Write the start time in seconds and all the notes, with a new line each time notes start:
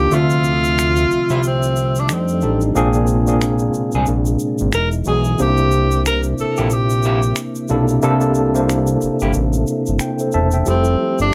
Already playing: D#3 A#3 D4 F4 G4
0.10 D2 C3 D3 F3 A3 C4 F4 E5, shaker
0.14 F4
0.30 shaker
0.44 shaker
0.64 shaker
0.79 finger snap, shaker
0.96 shaker
1.11 C2, shaker
1.29 C2 F3 C4 E4, shaker
1.43 shaker
1.47 C4
1.63 shaker
1.76 shaker
1.95 shaker
2.00 D4
2.09 F2 G3 A3 D4 D#4, finger snap, shaker
2.13 C4
2.28 shaker
2.41 A1 F3 C4 D4 D#4 G4 A4, shaker
2.61 shaker
2.75 A#1 A#2 C3 G#3 A#3 C4 D4 G#4, shaker
2.93 shaker
3.07 shaker
3.27 A#2 A#3 C4 D4 G#4, shaker
3.42 finger snap, shaker
3.59 shaker
3.74 C2, shaker
3.92 C2 G#4, shaker
3.96 C4 D4
4.06 A#1, shaker
4.26 shaker
4.39 shaker
4.58 G#1, shaker
4.72 E1 E4 A#4, finger snap, shaker
4.92 shaker
5.05 B1 E3 B3 D#4 F#4 G#4, shaker
5.24 shaker
5.38 C2 C3 A#3 C4 D4 D#4 G4 C5, shaker
5.47 E4
5.57 shaker
5.71 shaker
5.91 shaker
6.06 A#4, finger snap, shaker
6.23 shaker
6.38 A#1 A4, shaker
6.57 A#1 A#3 E4 G4, shaker
6.70 G4, shaker
6.90 shaker
7.03 A#3 E4 G4, shaker
7.23 shaker
7.36 finger snap, shaker
7.55 shaker
7.68 B1 C3 A#3 D4 E4 A4, shaker
7.88 shaker
8.02 C2 C3 A#3 D4 E4 A4, shaker
8.21 shaker
8.35 shaker
8.54 C3 A#3 D4 E4 C5, shaker
8.70 finger snap, shaker
8.87 shaker
9.01 G1, shaker
9.20 G1 A#3 E4 G4, shaker
9.33 A1, shaker
9.53 shaker
9.67 shaker
9.86 G1, shaker
9.99 G5, finger snap, shaker
10.19 A4 C5, shaker
10.32 E1 C5 E5 A5, shaker
10.51 E5 G5, shaker
10.66 F1 F3 G3 A3 C4 E4 G4 A4, shaker
10.84 shaker
11.19 G1 D4, shaker